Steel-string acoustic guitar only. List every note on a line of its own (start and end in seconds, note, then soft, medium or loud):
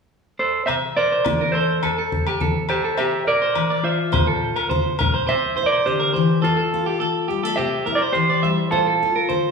0.69 1.20 C3 medium
1.27 1.78 E3 soft
1.83 2.35 F2 medium
2.40 2.92 F3 medium
2.98 3.50 C3 medium
3.56 4.07 E3 medium
4.12 4.64 A#2 medium
4.71 5.22 D3 medium
5.29 5.80 C3 medium
5.58 6.43 E4 medium
5.87 6.15 D3 medium
6.16 6.44 E3 medium
6.44 6.95 F2 medium
6.74 7.55 F4 medium
7.01 7.52 F3 medium
7.30 7.45 G3 medium
7.45 7.58 A3 soft
7.59 8.10 C3 medium
7.87 8.72 E4 medium
8.15 8.67 E3 medium
8.44 8.72 G3 medium
8.72 9.24 A#2 medium
9.03 9.51 F4 medium
9.29 9.51 D3 medium